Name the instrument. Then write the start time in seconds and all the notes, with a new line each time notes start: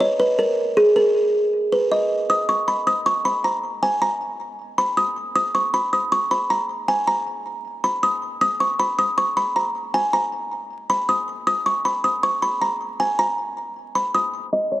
kalimba
0.00 C#5
0.20 B4
0.39 A#4
0.77 G#4
0.96 A#4
1.72 B4
1.92 D#5
2.30 D#6
2.49 C#6
2.68 B5
2.87 D#6
3.06 C#6
3.25 B5
3.44 A#5
3.83 G#5
4.02 A#5
4.78 B5
4.97 D#6
5.36 D#6
5.55 C#6
5.74 B5
5.93 D#6
6.12 C#6
6.31 B5
6.50 A#5
6.88 G#5
7.08 A#5
7.84 B5
8.03 D#6
8.41 D#6
8.60 C#6
8.79 B5
8.99 D#6
9.18 C#6
9.37 B5
9.56 A#5
9.94 G#5
10.13 A#5
10.90 B5
11.09 D#6
11.47 D#6
11.66 C#6
11.85 B5
12.04 D#6
12.23 C#6
12.42 B5
12.62 A#5
13.00 G#5
13.19 A#5
13.95 B5
14.15 D#6
14.53 D#5
14.72 C#5